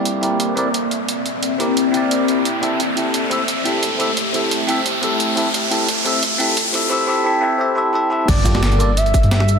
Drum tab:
CC |----------------|----------------|----------------|----------------|
HH |x-x-x-x-x-x-x-x-|x-x-x-x-x-x-x-x-|x-x-x-x-x-x-x-x-|x-x-x-x-x-x-x-x-|
SH |----------------|----------------|----------------|----------------|
SD |----------------|----------------|----------------|----------------|
BD |----------------|----------------|----------------|----------------|

CC |----------------|----------------|x---------------|
HH |x-x-x-x-x-x-x-x-|----------------|x-x-xxx-xxxxx-x-|
SH |----------------|----------------|--x--xx---x---x-|
SD |----------------|----------------|---oo-------oo--|
BD |----------------|----------------|o-o-------o-----|